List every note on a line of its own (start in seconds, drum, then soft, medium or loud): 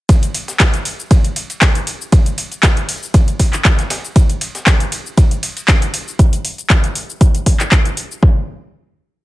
0.09 kick loud
0.09 closed hi-hat medium
0.09 ride medium
0.09 shaker medium
0.23 closed hi-hat medium
0.23 shaker soft
0.34 open hi-hat loud
0.34 ride medium
0.48 snare soft
0.48 closed hi-hat soft
0.48 shaker medium
0.60 kick loud
0.60 snare loud
0.60 clap loud
0.60 closed hi-hat medium
0.60 ride medium
0.60 shaker medium
0.74 closed hi-hat medium
0.74 shaker soft
0.85 open hi-hat loud
0.85 ride medium
1.00 shaker medium
1.11 kick loud
1.11 closed hi-hat medium
1.11 ride medium
1.11 shaker medium
1.24 closed hi-hat medium
1.24 shaker soft
1.36 open hi-hat loud
1.36 ride medium
1.50 closed hi-hat soft
1.50 ride soft
1.50 shaker medium
1.61 kick loud
1.61 snare loud
1.61 clap loud
1.61 closed hi-hat medium
1.61 ride medium
1.61 shaker medium
1.75 closed hi-hat medium
1.75 shaker soft
1.87 open hi-hat loud
1.87 ride medium
2.01 shaker medium
2.12 kick loud
2.12 closed hi-hat medium
2.12 ride medium
2.12 shaker medium
2.26 closed hi-hat medium
2.26 shaker soft
2.38 open hi-hat loud
2.38 ride medium
2.52 closed hi-hat soft
2.52 shaker medium
2.63 kick loud
2.63 snare loud
2.63 clap loud
2.63 closed hi-hat medium
2.63 ride medium
2.63 shaker medium
2.77 closed hi-hat medium
2.77 shaker soft
2.89 open hi-hat medium
2.89 open hi-hat loud
3.03 shaker medium
3.14 kick loud
3.14 closed hi-hat medium
3.14 ride medium
3.14 shaker medium
3.28 closed hi-hat soft
3.28 shaker soft
3.39 kick medium
3.39 open hi-hat loud
3.39 ride medium
3.53 clap soft
3.53 closed hi-hat soft
3.53 shaker medium
3.65 kick loud
3.65 clap loud
3.65 closed hi-hat medium
3.65 ride medium
3.65 shaker medium
3.79 snare soft
3.79 closed hi-hat medium
3.79 shaker soft
3.90 snare loud
3.90 open hi-hat loud
3.90 ride medium
4.05 shaker medium
4.16 kick loud
4.16 closed hi-hat medium
4.16 ride medium
4.16 shaker medium
4.30 closed hi-hat medium
4.30 shaker soft
4.41 open hi-hat loud
4.41 ride medium
4.55 snare medium
4.55 closed hi-hat soft
4.55 shaker medium
4.66 kick loud
4.66 snare loud
4.66 clap loud
4.66 closed hi-hat medium
4.66 ride medium
4.66 shaker medium
4.80 closed hi-hat medium
4.80 shaker soft
4.92 open hi-hat loud
4.92 ride medium
5.06 shaker medium
5.17 kick loud
5.17 closed hi-hat medium
5.17 ride medium
5.17 shaker medium
5.31 closed hi-hat medium
5.31 shaker soft
5.43 open hi-hat loud
5.43 ride medium
5.57 closed hi-hat soft
5.57 ride soft
5.57 shaker medium
5.68 kick loud
5.68 snare loud
5.68 clap loud
5.68 closed hi-hat medium
5.68 ride medium
5.68 shaker medium
5.82 closed hi-hat medium
5.82 shaker soft
5.94 open hi-hat loud
5.94 ride medium
6.08 shaker medium
6.19 kick loud
6.19 closed hi-hat medium
6.19 shaker medium
6.33 closed hi-hat soft
6.33 shaker soft
6.45 open hi-hat loud
6.58 closed hi-hat soft
6.58 shaker medium
6.70 kick loud
6.70 clap loud
6.70 closed hi-hat medium
6.70 shaker medium
6.84 closed hi-hat medium
6.84 shaker soft
6.95 open hi-hat loud
7.10 shaker medium
7.21 kick loud
7.21 closed hi-hat medium
7.21 shaker medium
7.35 closed hi-hat medium
7.35 shaker soft
7.46 kick medium
7.46 open hi-hat loud
7.60 clap soft
7.60 closed hi-hat soft
7.60 shaker medium
7.71 kick loud
7.71 clap loud
7.71 closed hi-hat medium
7.71 shaker medium
7.85 closed hi-hat soft
7.85 shaker soft
7.97 open hi-hat loud
8.12 shaker medium
8.23 kick loud